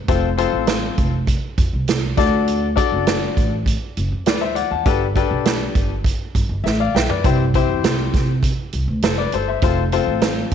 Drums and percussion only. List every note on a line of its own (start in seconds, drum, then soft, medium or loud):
0.08 kick loud
0.08 closed hi-hat medium
0.38 closed hi-hat medium
0.67 snare loud
0.67 closed hi-hat medium
0.98 kick medium
0.98 closed hi-hat medium
1.27 kick medium
1.27 closed hi-hat medium
1.58 kick medium
1.58 closed hi-hat medium
1.88 snare loud
1.88 closed hi-hat medium
2.17 kick loud
2.17 snare soft
2.17 closed hi-hat medium
2.48 closed hi-hat medium
2.77 kick medium
2.77 closed hi-hat medium
3.07 snare loud
3.07 closed hi-hat medium
3.37 kick medium
3.37 closed hi-hat medium
3.66 kick medium
3.66 closed hi-hat loud
3.97 closed hi-hat medium
4.26 snare loud
4.26 closed hi-hat medium
4.56 closed hi-hat medium
4.86 kick loud
4.86 closed hi-hat medium
5.16 kick medium
5.16 closed hi-hat medium
5.45 snare loud
5.45 closed hi-hat medium
5.75 kick medium
5.75 closed hi-hat medium
6.04 kick medium
6.04 closed hi-hat medium
6.35 kick medium
6.35 closed hi-hat medium
6.66 snare medium
6.96 snare medium
7.09 floor tom medium
7.24 kick loud
7.24 closed hi-hat medium
7.54 kick medium
7.54 closed hi-hat medium
7.84 snare loud
7.84 closed hi-hat medium
8.14 kick medium
8.14 snare soft
8.14 closed hi-hat medium
8.43 kick medium
8.43 closed hi-hat medium
8.73 closed hi-hat medium
9.02 snare loud
9.02 closed hi-hat medium
9.32 closed hi-hat medium
9.62 kick loud
9.62 closed hi-hat medium
9.92 closed hi-hat medium
10.21 snare loud
10.21 closed hi-hat medium
10.51 closed hi-hat medium